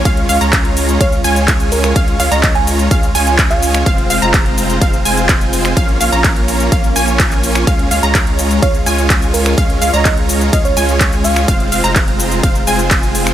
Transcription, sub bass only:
X:1
M:4/4
L:1/16
Q:1/4=126
K:Db
V:1 name="Sub bass" clef=bass
D,,2 D,, D,,4- D,, D,,2 D,,6 | D,,2 D,, D,,4- D,, D,,2 D,,6 | F,,,2 F,,, F,,,4- F,,, F,,,2 F,,,6 | B,,,2 B,,, B,,,4- B,,, B,,,2 B,,,6 |
D,,2 D,, D,,4- D,, D,,2 D,,6 | D,,2 D,, D,,4- D,, D,,2 D,,6 | F,,,2 F,,, F,,,4- F,,, F,,,2 F,,,6 |]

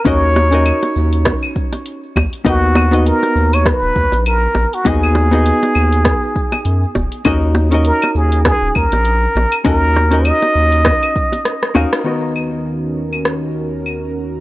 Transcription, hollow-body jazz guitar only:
X:1
M:4/4
L:1/16
Q:"Swing 16ths" 1/4=100
K:Ebm
V:1 name="Hollow-body jazz guitar"
[DEGBe]3 [DEGBe]12- [DEGBe] | [=B,^D^F^A^d]3 [B,DFd]12- [B,DFd] | [CEGAe]3 [CEGAe]12- [CEGAe] | [DEGBe]3 [DEGBe]12- [DEGBe] |
[DEGBe]3 [DEGBe]8- [DEGBe]3 [DEGBf]2 | [^D,=B,^D^F^A^d]16 |]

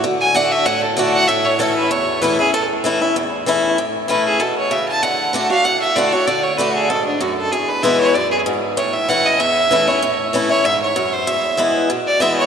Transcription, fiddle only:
X:1
M:4/4
L:1/8
Q:"Swing" 1/4=192
K:A
V:1 name="Fiddle"
z g f e f A d f | e c A B c2 B G | A z6 z | z2 B G A c e a |
f3 =f ^f e d c | d c B G A D F A | G B e c d G z2 | c e f ^d e3 c- |
c2 z c e c2 =c | e2 z3 d e c |]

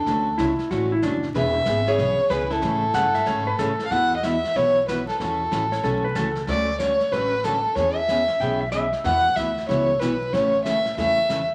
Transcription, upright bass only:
X:1
M:4/4
L:1/8
Q:"Swing" 1/4=187
K:Emix
V:1 name="Upright bass" clef=bass
D,,2 C,, z A,,,2 F,,,2 | E,,,2 G,,,2 B,,, z C,,2 | A,,2 =G,,2 ^G,,2 A,, z | E,,4 B,,,4 |
E,,2 A,,,2 B,,,2 C,,2 | D,,4 A,,,4 | E,,4 B,,,4 | E,,2 D,,2 C,,2 B,,,2 |
A,,,4 E,,4 |]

